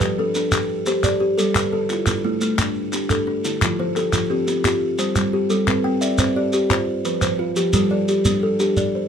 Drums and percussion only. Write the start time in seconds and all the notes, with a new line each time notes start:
0.01 clap, shekere
0.35 shekere
0.52 clap, shekere
0.86 clap, shekere
1.04 clap, shekere
1.38 shekere
1.55 clap, shekere
1.89 clap, shekere
2.07 clap, shekere
2.41 shekere
2.58 clap, shekere
2.93 clap, shekere
3.10 clap, shekere
3.45 shekere
3.62 clap, shekere
3.96 clap, shekere
4.13 clap, shekere
4.48 shekere
4.64 clap, shekere
4.99 clap, shekere
5.16 clap, shekere
5.50 shekere
5.67 clap, shekere
6.01 shekere
6.18 clap, shekere
6.53 shekere
6.70 clap, shekere
7.05 shekere
7.22 clap, shekere
7.56 shekere
7.73 shekere
8.08 shekere
8.25 shekere
8.60 shekere
8.77 shekere